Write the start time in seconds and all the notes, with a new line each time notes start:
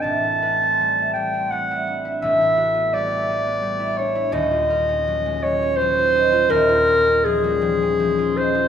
Already playing: G3 C4 G4
0.01 A1 A2 A5
0.24 E4
0.42 B4
0.61 C4
0.80 G3
0.98 A3
1.13 G3 G5
1.34 C4
1.51 G3 F#5
1.71 E4
1.87 D4
2.05 E4
2.21 A1 A2 E5
2.41 E4
2.57 F#4
2.74 B3
2.93 G3 D5
3.11 A3
3.30 G3
3.46 B3
3.62 G3
3.80 E4
3.97 D4 C#5
4.15 E4
4.32 D#1 D#2 D#5
4.51 F4
4.70 A#4
4.89 C#4
5.07 F#3
5.26 G#3
5.43 F#3 C#5
5.62 C#4
5.76 C5
5.81 F#3
5.99 F4
6.15 D#4
6.32 F4
6.49 D#1 D#2 A#4
6.69 F4
6.87 A#4
7.07 C#4
7.25 F3 G#4
7.44 G3
7.62 F3
7.82 C#4
8.00 F3
8.18 F4
8.37 D#4 C5
8.55 F4